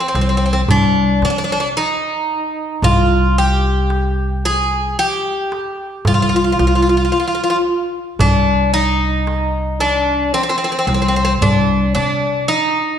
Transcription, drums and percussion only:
0.15 darbuka tek
0.68 darbuka dum
1.22 darbuka tek
2.83 darbuka dum
3.90 darbuka tek
4.71 darbuka ka
5.52 darbuka tek
6.05 darbuka dum
6.59 darbuka tek
8.19 darbuka dum
9.27 darbuka tek
10.08 darbuka ka
10.89 darbuka tek
11.42 darbuka dum
11.96 darbuka tek

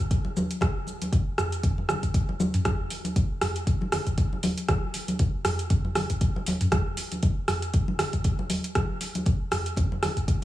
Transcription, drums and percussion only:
0.00 cabasa
0.11 kick, closed hi-hat, cabasa
0.25 muted conga
0.37 high conga, cabasa
0.51 closed hi-hat, cabasa
0.61 kick, cross-stick, closed hi-hat, muted conga, high conga, low conga, cabasa
0.87 muted conga, cabasa
1.02 closed hi-hat, high conga, cabasa
1.13 kick, closed hi-hat, muted conga, cabasa
1.38 cross-stick, closed hi-hat, mid tom, muted conga, cabasa
1.52 closed hi-hat, cabasa
1.63 kick, closed hi-hat, mid tom, cabasa
1.78 muted conga
1.89 cross-stick, high conga, low conga, cabasa
2.03 kick, closed hi-hat, muted conga, cabasa
2.14 kick, closed hi-hat, cabasa
2.29 muted conga
2.40 high conga, cabasa
2.54 closed hi-hat, mid tom, cabasa
2.65 kick, cross-stick, closed hi-hat, muted conga, high conga, cabasa
2.90 open hi-hat, muted conga, cabasa
3.04 closed hi-hat, high conga, cabasa
3.16 kick, closed hi-hat, muted conga, cabasa
3.41 cross-stick, mid tom, open hi-hat, muted conga, cabasa
3.56 closed hi-hat, cabasa
3.67 kick, closed hi-hat, cabasa
3.81 muted conga, high conga
3.92 cross-stick, open hi-hat, low conga, cabasa
4.07 kick, closed hi-hat, muted conga, cabasa
4.18 kick, closed hi-hat, cabasa
4.33 muted conga
4.43 open hi-hat, high conga, cabasa
4.58 closed hi-hat, cabasa
4.68 kick, cross-stick, closed hi-hat, muted conga, high conga, low conga, cabasa
4.94 open hi-hat, muted conga, cabasa
5.08 closed hi-hat, high conga, cabasa
5.19 kick, closed hi-hat, muted conga, cabasa
5.45 cross-stick, mid tom, open hi-hat, muted conga, cabasa
5.59 closed hi-hat, cabasa
5.70 kick, closed hi-hat, mid tom, cabasa
5.85 muted conga
5.95 cross-stick, open hi-hat, high conga, low conga, cabasa
6.10 kick, closed hi-hat, muted conga, cabasa
6.21 kick, closed hi-hat, cabasa
6.36 muted conga
6.46 open hi-hat, high conga, cabasa
6.61 closed hi-hat, mid tom, cabasa
6.72 kick, cross-stick, closed hi-hat, muted conga, high conga, cabasa
6.97 open hi-hat, muted conga, cabasa
7.12 closed hi-hat, high conga, cabasa
7.23 kick, closed hi-hat, muted conga, cabasa
7.48 cross-stick, mid tom, open hi-hat, muted conga, cabasa
7.62 closed hi-hat, cabasa
7.74 kick, closed hi-hat, cabasa
7.88 muted conga, high conga
7.99 cross-stick, open hi-hat, low conga, cabasa
8.13 kick, closed hi-hat, muted conga, cabasa
8.24 kick, closed hi-hat, cabasa
8.39 muted conga
8.50 open hi-hat, high conga, cabasa
8.64 closed hi-hat, cabasa
8.75 kick, cross-stick, closed hi-hat, muted conga, high conga, low conga, cabasa
9.01 open hi-hat, muted conga, cabasa
9.15 closed hi-hat, high conga, cabasa
9.26 kick, closed hi-hat, muted conga, cabasa
9.51 cross-stick, mid tom, open hi-hat, muted conga, cabasa
9.66 closed hi-hat, cabasa
9.77 kick, closed hi-hat, mid tom, low conga, cabasa
9.92 muted conga
10.03 cross-stick, open hi-hat, high conga, low conga, cabasa
10.17 kick, closed hi-hat, muted conga, cabasa
10.28 kick, closed hi-hat, cabasa

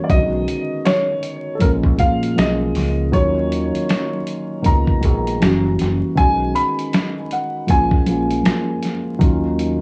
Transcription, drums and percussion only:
0.10 kick, closed hi-hat
0.48 closed hi-hat
0.85 finger snap, snare, closed hi-hat
1.23 closed hi-hat
1.60 kick, closed hi-hat
1.84 kick
1.99 kick, closed hi-hat
2.23 closed hi-hat
2.38 finger snap, snare, closed hi-hat
2.75 snare, open hi-hat
3.13 kick, closed hi-hat
3.52 closed hi-hat
3.75 closed hi-hat
3.89 finger snap, snare, closed hi-hat
4.27 closed hi-hat
4.64 kick, closed hi-hat
4.87 kick
5.03 kick, closed hi-hat
5.27 closed hi-hat
5.42 finger snap, snare, closed hi-hat
5.79 snare, closed hi-hat
6.17 kick, closed hi-hat
6.56 closed hi-hat
6.79 closed hi-hat
6.93 finger snap, snare, closed hi-hat
7.31 closed hi-hat
7.68 kick, closed hi-hat
7.91 kick
8.06 closed hi-hat
8.31 closed hi-hat
8.45 finger snap, snare, closed hi-hat
8.83 snare, closed hi-hat
9.21 kick, closed hi-hat
9.59 closed hi-hat

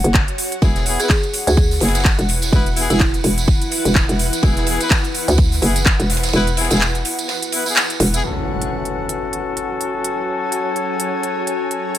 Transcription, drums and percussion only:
0.04 closed hi-hat
0.14 kick, snare, clap, ride
0.28 closed hi-hat
0.38 open hi-hat, ride
0.52 closed hi-hat
0.62 kick, ride, tambourine
0.76 snare, closed hi-hat, tambourine
0.86 open hi-hat, ride
1.00 closed hi-hat, tambourine
1.09 kick, snare, clap, ride, tambourine
1.23 closed hi-hat, ride, tambourine
1.34 open hi-hat, ride
1.47 closed hi-hat, tambourine
1.57 kick, ride, tambourine
1.71 snare, open hi-hat, tambourine
1.80 snare, open hi-hat, ride
1.88 snare, ride
1.95 snare, closed hi-hat, ride, tambourine
2.00 snare, ride
2.05 kick, snare, clap, ride
2.19 closed hi-hat, tambourine
2.29 open hi-hat, ride
2.42 snare, closed hi-hat, tambourine
2.53 kick, ride, tambourine
2.66 closed hi-hat, ride, tambourine
2.76 open hi-hat, ride
2.90 closed hi-hat, tambourine
2.99 kick, snare, clap, ride, tambourine
3.14 closed hi-hat, tambourine
3.24 open hi-hat, ride
3.38 closed hi-hat, tambourine
3.48 kick, ride, tambourine
3.62 closed hi-hat, tambourine
3.72 open hi-hat, ride
3.85 closed hi-hat, tambourine
3.95 kick, snare, clap, ride
4.09 closed hi-hat, tambourine
4.19 open hi-hat, ride
4.33 closed hi-hat, tambourine
4.43 kick, ride, tambourine
4.57 snare, closed hi-hat, tambourine
4.66 open hi-hat, ride
4.81 closed hi-hat, tambourine
4.90 kick, snare, clap, ride, tambourine
5.04 closed hi-hat, ride, tambourine
5.15 open hi-hat, ride
5.28 closed hi-hat, tambourine
5.38 kick, ride, tambourine
5.51 snare, open hi-hat, tambourine
5.62 open hi-hat, ride
5.76 closed hi-hat, tambourine
5.85 kick, snare, clap, ride
5.99 closed hi-hat, tambourine
6.10 snare, open hi-hat, ride
6.16 snare, ride
6.23 snare, closed hi-hat, ride, tambourine
6.28 snare, ride
6.33 ride, tambourine
6.47 closed hi-hat, ride, tambourine
6.57 snare, open hi-hat, ride
6.64 snare, ride
6.70 snare, closed hi-hat, ride, tambourine
6.76 snare, ride
6.81 snare, clap, ride, tambourine
6.95 closed hi-hat, tambourine
7.05 open hi-hat, ride
7.19 closed hi-hat, tambourine
7.28 snare, ride, tambourine
7.42 closed hi-hat, tambourine
7.52 open hi-hat, ride
7.66 open hi-hat, tambourine
7.76 snare, clap, ride, tambourine
7.90 closed hi-hat, tambourine
8.00 open hi-hat, ride
8.14 closed hi-hat, tambourine
8.62 closed hi-hat
8.85 closed hi-hat
9.09 closed hi-hat
9.33 closed hi-hat
9.57 closed hi-hat
9.81 closed hi-hat
10.04 closed hi-hat
10.52 closed hi-hat
10.76 closed hi-hat
11.00 closed hi-hat
11.23 closed hi-hat
11.47 closed hi-hat
11.71 closed hi-hat
11.95 closed hi-hat

